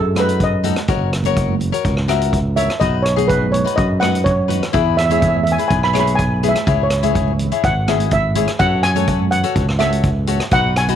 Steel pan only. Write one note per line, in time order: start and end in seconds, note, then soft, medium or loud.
0.00 0.18 A4 medium
0.20 0.43 B4 medium
0.44 0.87 D#5 medium
2.56 2.81 E5 medium
2.80 3.05 D#5 medium
3.02 3.26 C#5 medium
3.28 3.53 B4 medium
3.52 3.77 C#5 medium
3.76 4.01 D#5 medium
4.00 4.23 F#5 medium
4.24 4.69 C#5 medium
4.97 5.04 E5 medium
5.06 5.11 E5 medium
5.12 5.19 E5 medium
5.20 5.27 E5 medium
5.28 5.36 E5 medium
5.37 5.42 E5 medium
5.44 5.51 E5 medium
5.52 5.67 G#5 medium
5.68 5.85 G#5 medium
5.84 5.98 B5 medium
6.00 6.17 B5 medium
6.15 6.50 G#5 medium
6.49 6.82 E5 medium
6.83 7.05 C#5 medium
7.65 8.13 F#5 medium
8.13 8.61 E5 medium
8.59 8.84 F#5 loud
8.83 9.28 G#5 loud
9.31 9.81 F#5 medium
9.79 10.53 E5 medium
10.53 10.77 F#5 loud
10.77 10.96 G#5 loud